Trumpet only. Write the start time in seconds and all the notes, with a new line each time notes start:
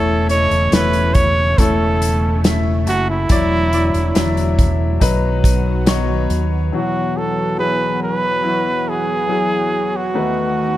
Already playing: A4
0.30 C#5
0.74 B4
1.14 C#5
1.59 A4
2.89 F#4
3.11 E4
6.76 F#4
7.17 A4
7.59 B4
8.03 B4
8.89 G#4
9.96 F#4